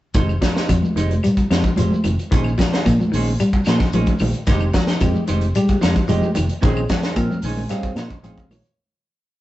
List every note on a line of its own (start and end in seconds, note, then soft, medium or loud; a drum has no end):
0.14 0.37 F1 medium
0.14 0.36 D#3 medium
0.14 0.31 G#3 medium
0.14 0.31 D#4 medium
0.14 0.31 G4 medium
0.14 0.32 C5 medium
0.14 kick medium
0.14 closed hi-hat medium
0.14 high conga soft
0.14 shekere medium
0.29 claves medium
0.29 shekere soft
0.41 0.63 F3 medium
0.41 kick medium
0.41 snare medium
0.41 closed hi-hat soft
0.41 high conga medium
0.41 shekere medium
0.56 0.73 D#4 soft
0.56 0.72 G4 soft
0.56 0.72 C5 medium
0.56 snare medium
0.56 shekere soft
0.68 0.80 F2 medium
0.68 0.90 F3 medium
0.68 kick medium
0.68 closed hi-hat medium
0.68 high conga soft
0.68 claves medium
0.68 shekere medium
0.82 high conga medium
0.82 shekere soft
0.96 1.18 F1 medium
0.96 1.17 D#3 medium
0.96 1.12 G#3 soft
0.96 1.13 D#4 medium
0.96 1.13 G4 medium
0.96 1.13 C5 medium
0.96 closed hi-hat soft
0.96 shekere medium
1.10 closed hi-hat soft
1.10 high conga medium
1.10 shekere soft
1.23 1.45 G3 medium
1.23 closed hi-hat medium
1.23 high conga soft
1.23 claves medium
1.23 shekere medium
1.37 kick medium
1.37 closed hi-hat soft
1.37 shekere soft
1.51 1.61 F2 medium
1.51 1.72 F3 medium
1.51 1.67 G#3 soft
1.51 1.67 D#4 medium
1.51 1.68 G4 medium
1.51 1.68 C5 medium
1.51 snare medium
1.51 closed hi-hat soft
1.51 claves medium
1.51 shekere medium
1.64 kick medium
1.64 closed hi-hat soft
1.64 shekere soft
1.76 1.88 F1 medium
1.76 1.99 F3 medium
1.76 1.94 G#3 soft
1.76 1.94 G4 medium
1.76 1.95 C5 medium
1.76 closed hi-hat medium
1.76 high conga medium
1.76 shekere medium
1.90 high conga medium
1.90 shekere soft
2.04 2.16 F1 medium
2.04 2.26 D#3 medium
2.04 closed hi-hat soft
2.04 high conga medium
2.04 claves medium
2.04 shekere medium
2.19 closed hi-hat soft
2.19 shekere soft
2.31 2.54 A#1 medium
2.31 2.53 D#3 medium
2.31 2.48 C#4 medium
2.31 2.48 D#4 medium
2.31 2.49 G#4 medium
2.31 2.48 C5 medium
2.31 kick medium
2.31 closed hi-hat medium
2.31 shekere medium
2.44 claves medium
2.44 shekere soft
2.58 2.80 F3 medium
2.58 kick medium
2.58 snare medium
2.58 closed hi-hat soft
2.58 high conga medium
2.58 shekere medium
2.73 2.89 D#4 soft
2.73 2.89 G#4 medium
2.73 2.89 C5 medium
2.73 snare medium
2.73 closed hi-hat soft
2.73 shekere soft
2.85 2.97 A#2 medium
2.85 3.07 F3 medium
2.85 kick medium
2.85 closed hi-hat medium
2.85 claves medium
2.85 shekere medium
2.99 high conga medium
2.99 shekere soft
3.12 3.35 A#1 medium
3.12 3.33 D#3 medium
3.12 3.29 C#4 medium
3.12 3.30 D#4 medium
3.12 3.30 G#4 medium
3.12 3.30 C5 medium
3.12 open hi-hat medium
3.12 shekere medium
3.28 shekere soft
3.40 3.61 G3 medium
3.40 closed hi-hat medium
3.40 high conga soft
3.40 claves medium
3.40 shekere medium
3.53 kick medium
3.53 closed hi-hat soft
3.53 shekere soft
3.65 3.78 A#2 medium
3.65 3.88 F3 medium
3.65 3.83 C#4 medium
3.65 3.84 D#4 medium
3.65 3.84 G#4 medium
3.65 3.84 C5 medium
3.65 snare medium
3.65 closed hi-hat soft
3.65 claves medium
3.65 shekere medium
3.79 kick medium
3.79 snare soft
3.79 closed hi-hat soft
3.79 shekere soft
3.92 4.04 A#1 medium
3.92 4.15 F3 medium
3.92 4.10 C#4 medium
3.92 4.10 D#4 medium
3.92 4.11 G#4 medium
3.92 4.11 C5 medium
3.92 closed hi-hat medium
3.92 high conga medium
3.92 shekere medium
4.06 kick medium
4.06 closed hi-hat soft
4.06 shekere soft
4.18 4.31 A#1 medium
4.18 4.42 D#3 medium
4.18 open hi-hat medium
4.18 high conga medium
4.18 claves medium
4.18 shekere medium
4.33 closed hi-hat soft
4.33 shekere soft
4.47 4.69 F1 medium
4.47 4.68 D#3 medium
4.47 4.64 G#3 medium
4.47 4.69 G#3 medium
4.47 4.64 D#4 medium
4.47 4.69 D#4 medium
4.47 4.64 G4 medium
4.47 4.70 G4 medium
4.47 4.65 C5 medium
4.47 kick medium
4.47 snare soft
4.47 closed hi-hat medium
4.47 high conga soft
4.47 shekere medium
4.59 claves medium
4.59 shekere soft
4.73 4.96 F3 medium
4.73 kick medium
4.73 snare medium
4.73 closed hi-hat soft
4.73 high conga medium
4.73 shekere medium
4.87 5.05 D#4 soft
4.87 5.05 G4 medium
4.87 5.04 C5 medium
4.87 snare medium
4.87 shekere soft
5.00 5.12 F2 medium
5.00 5.22 F3 medium
5.00 5.22 G#3 medium
5.00 5.23 D#4 medium
5.00 5.24 G4 medium
5.00 kick medium
5.00 closed hi-hat medium
5.00 high conga soft
5.00 claves medium
5.00 shekere medium
5.14 high conga medium
5.14 shekere soft
5.27 5.51 F1 medium
5.27 5.49 D#3 medium
5.27 5.44 G#3 medium
5.27 5.45 D#4 medium
5.27 5.45 G4 medium
5.27 5.45 C5 medium
5.27 closed hi-hat medium
5.27 shekere medium
5.41 closed hi-hat soft
5.41 shekere soft
5.55 5.77 G3 medium
5.55 5.77 G#3 medium
5.55 5.77 D#4 medium
5.55 5.77 G4 medium
5.55 closed hi-hat medium
5.55 high conga soft
5.55 claves medium
5.55 shekere medium
5.68 kick medium
5.68 closed hi-hat soft
5.68 shekere soft
5.81 5.94 F2 medium
5.81 6.03 F3 medium
5.81 5.98 G#3 medium
5.81 5.98 D#4 medium
5.81 5.98 G4 medium
5.81 5.98 C5 medium
5.81 snare medium
5.81 closed hi-hat medium
5.81 claves medium
5.81 shekere medium
5.96 kick medium
5.96 closed hi-hat soft
5.96 shekere soft
6.08 6.20 F1 medium
6.08 6.29 F3 medium
6.08 6.25 G#3 medium
6.08 6.30 G#3 medium
6.08 6.25 D#4 medium
6.08 6.30 D#4 medium
6.08 6.30 G4 medium
6.08 6.25 G4 medium
6.08 6.25 C5 medium
6.08 closed hi-hat medium
6.08 high conga medium
6.08 shekere medium
6.22 high conga medium
6.22 shekere soft
6.35 6.48 F1 medium
6.35 6.57 D#3 medium
6.35 closed hi-hat medium
6.35 high conga medium
6.35 claves medium
6.35 shekere medium
6.49 closed hi-hat soft
6.49 shekere soft
6.61 6.85 A#1 medium
6.61 6.84 D#3 medium
6.61 6.83 C4 medium
6.61 6.78 C#4 medium
6.61 6.84 C#4 medium
6.61 6.79 D#4 medium
6.61 6.84 D#4 medium
6.61 6.79 G#4 medium
6.61 6.84 G#4 medium
6.61 6.79 C5 medium
6.61 kick medium
6.61 closed hi-hat medium
6.61 high conga soft
6.61 shekere medium
6.76 claves medium
6.76 shekere soft
6.89 7.11 F3 medium
6.89 kick medium
6.89 snare medium
6.89 closed hi-hat medium
6.89 high conga medium
6.89 shekere medium
7.03 7.20 D#4 soft
7.03 7.20 G#4 soft
7.03 7.19 C5 medium
7.03 snare medium
7.03 closed hi-hat soft
7.03 shekere soft
7.16 7.27 A#2 medium
7.16 7.38 F3 medium
7.16 7.37 C4 medium
7.16 7.37 C#4 medium
7.16 7.37 D#4 medium
7.16 7.38 A#4 medium
7.16 kick medium
7.16 closed hi-hat medium
7.16 claves medium
7.16 shekere medium
7.31 high conga medium
7.31 shekere soft
7.42 7.65 A#1 medium
7.42 7.65 D#3 medium
7.42 7.60 C#4 medium
7.42 7.60 D#4 medium
7.42 7.61 G#4 medium
7.42 7.61 C5 medium
7.42 7.69 G#5 medium
7.42 open hi-hat medium
7.42 shekere medium
7.57 high conga medium
7.57 shekere soft
7.69 7.91 G3 medium
7.69 7.91 C4 medium
7.69 7.91 C#4 medium
7.69 7.91 D#4 medium
7.69 7.91 G#4 medium
7.69 7.95 F5 medium
7.69 snare soft
7.69 closed hi-hat medium
7.69 high conga soft
7.69 claves medium
7.69 shekere medium
7.83 kick medium
7.83 closed hi-hat soft
7.83 shekere soft
7.95 8.07 A#2 medium
7.95 8.18 F3 medium
7.95 8.13 C#4 medium
7.95 8.14 D#4 medium
7.95 8.14 C5 medium
7.95 8.22 D#5 medium
7.95 muted clean electric guitar stroke medium
7.95 snare medium
7.95 closed hi-hat soft
7.95 claves medium
7.95 shekere medium
8.10 kick medium
8.10 closed hi-hat soft
8.10 shekere soft
8.23 8.34 A#1 medium
8.23 8.45 F3 medium
8.23 8.44 C4 medium
8.23 8.40 C#4 medium
8.23 8.44 C#4 medium
8.23 8.40 D#4 medium
8.23 8.45 D#4 medium
8.23 8.45 G#4 medium
8.23 8.40 G#4 medium
8.23 8.40 C5 medium
8.23 8.49 F5 medium
8.23 closed hi-hat medium
8.23 high conga medium
8.23 shekere medium
8.37 kick medium
8.37 closed hi-hat soft
8.37 shekere soft
8.48 8.60 A#1 medium
8.48 8.72 D#3 medium
8.48 8.76 C#5 medium
8.48 open hi-hat medium
8.48 high conga medium
8.48 claves medium
8.48 shekere medium
8.65 closed hi-hat soft
8.65 shekere soft